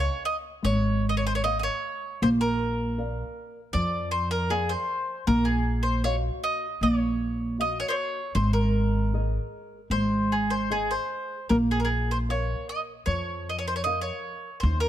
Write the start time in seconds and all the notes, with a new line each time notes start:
Already playing: C#5 D#5 F5
0.00 C#5
0.25 D#5
0.63 G#1 G#3 C#5
1.09 D#5
1.17 C#5
1.27 C5
1.35 C#5
1.44 C#5 D#5 F5
1.59 C#5 D#5
2.22 A#1 A#3 C5
2.41 A#4
2.98 A#4 D5 F5
3.73 F2 F3 D5
4.11 C5
4.31 A#4
4.50 G#4 A#4 D5 F5
4.69 C5
5.27 A#1 A#3 A#4
5.45 G#4
5.83 C5
6.04 F#4 C#5 D#5 F5
6.44 D#5
6.81 A#1 A#3 C#5
7.58 F#4 D#5 F5
7.80 C#5
7.88 C5 C#5
8.35 G#1 G#3 C5
8.53 A#4
9.14 G#4 C#5 D#5
9.90 G#1 G#3 C5
10.32 G#4
10.50 C5
10.70 G#4 C5 D#5
10.91 C5
11.49 A#1 A#3 A#4
11.71 G#4
11.80 A#4
11.85 G#4
12.11 C5
12.29 A#4 C#5 F5
12.69 D#5
13.06 F2 F3 C#5
13.49 D#5
13.59 C#5
13.68 C5
13.76 C#5
13.84 A#4 C#5 D#5 F5
14.01 C#5
14.60 D#2 C5
14.65 D#3
14.80 A#4